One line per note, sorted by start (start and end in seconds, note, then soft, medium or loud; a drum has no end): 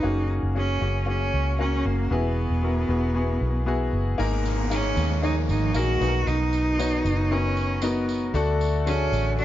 0.00 0.47 A#3 medium
0.00 0.48 C#4 medium
0.00 0.30 D#4 medium
0.00 0.48 F#4 medium
0.04 0.40 F#1 medium
0.04 0.48 G#4 medium
0.43 0.79 F#1 medium
0.55 0.77 A#3 medium
0.55 0.78 C#4 medium
0.55 1.05 C#4 medium
0.55 0.78 F#4 medium
0.55 0.78 G#4 medium
0.81 1.30 F#1 medium
0.81 1.03 A#3 medium
0.81 1.04 C#4 soft
0.81 1.04 F#4 medium
0.81 1.04 G#4 medium
1.06 1.51 A#3 medium
1.06 1.51 C#4 medium
1.06 1.56 C#4 medium
1.06 1.52 F#4 soft
1.06 1.52 G#4 medium
1.34 1.82 C#2 medium
1.59 2.03 A#3 medium
1.59 2.04 C#4 medium
1.59 1.87 C#4 medium
1.59 2.04 F#4 medium
1.59 2.04 A#4 medium
1.85 2.10 F#1 medium
1.85 2.13 A#3 medium
2.11 2.47 E1 medium
2.11 2.85 E3 soft
2.11 2.55 B3 medium
2.11 3.93 B3 medium
2.11 2.56 E4 medium
2.11 2.56 F#4 medium
2.11 2.56 G#4 medium
2.50 2.87 E1 medium
2.63 2.85 B3 medium
2.63 2.86 E4 medium
2.63 2.86 F#4 medium
2.63 2.86 A#4 medium
2.89 3.37 E1 medium
2.89 3.11 B3 medium
2.89 3.11 E4 medium
2.89 3.12 F#4 medium
2.89 3.12 G#4 medium
3.14 3.59 B3 medium
3.14 3.59 E4 medium
3.14 3.60 F#4 medium
3.14 3.60 G#4 medium
3.41 3.90 B1 medium
3.66 4.11 B3 medium
3.66 4.11 E4 medium
3.66 4.12 F#4 medium
3.66 4.12 G#4 loud
3.93 4.17 F#1 medium
4.18 4.93 G#1 medium
4.18 4.93 G#2 medium
4.18 4.63 A#3 medium
4.18 4.63 D#4 medium
4.18 4.63 G#4 medium
4.18 4.63 A#4 loud
4.18 tambourine soft
4.18 downlifter medium
4.46 tambourine soft
4.70 5.15 A#3 medium
4.70 5.20 C#4 medium
4.70 5.15 D#4 medium
4.70 5.15 G#4 medium
4.70 5.16 A#4 medium
4.70 tambourine medium
4.97 5.50 D#2 medium
4.97 tambourine medium
5.22 5.67 A#3 medium
5.22 5.67 D#4 medium
5.22 5.35 D#4 medium
5.22 5.67 G#4 medium
5.22 5.67 C#5 medium
5.22 tambourine soft
5.49 5.73 G#1 medium
5.49 5.78 D#4 medium
5.49 tambourine soft
5.74 5.99 A#1 medium
5.74 6.01 A#3 medium
5.74 5.99 D#4 medium
5.74 6.29 F#4 loud
5.74 6.00 G#4 medium
5.74 6.01 A#4 medium
5.74 tambourine medium
6.00 6.25 B1 medium
6.00 6.75 B2 medium
6.00 6.67 B3 medium
6.00 6.67 D#4 medium
6.00 6.67 F#4 medium
6.00 6.08 G#4 medium
6.00 tambourine soft
6.08 6.71 A#4 medium
6.27 7.01 B1 loud
6.27 7.33 D#4 loud
6.27 tambourine soft
6.53 tambourine soft
6.79 7.23 B3 medium
6.79 7.23 D#4 medium
6.79 7.23 F#4 medium
6.79 7.24 C#5 medium
6.79 tambourine medium
7.05 8.30 F#1 medium
7.05 tambourine medium
7.31 7.75 B3 medium
7.31 7.85 C#4 medium
7.31 7.75 D#4 medium
7.31 7.75 F#4 medium
7.31 7.75 A#4 medium
7.57 tambourine soft
7.82 8.26 B3 medium
7.82 8.22 B3 medium
7.82 8.27 D#4 medium
7.82 8.27 F#4 medium
7.82 8.27 A#4 medium
7.82 tambourine medium
8.09 tambourine soft
8.34 9.08 D2 medium
8.34 8.85 D3 medium
8.34 8.78 A3 loud
8.34 8.79 D4 loud
8.34 8.79 F#4 loud
8.34 8.79 A4 loud
8.34 tambourine soft
8.61 tambourine soft
8.86 9.30 D3 medium
8.86 9.30 A3 medium
8.86 9.35 C#4 medium
8.86 9.31 F#4 medium
8.86 9.31 G#4 medium
8.86 tambourine medium
9.12 9.45 A1 medium
9.12 tambourine medium
9.38 9.45 A3 medium
9.38 9.45 D4 medium
9.38 9.45 D4 loud
9.38 9.45 F#4 medium
9.38 9.45 A4 medium
9.38 tambourine soft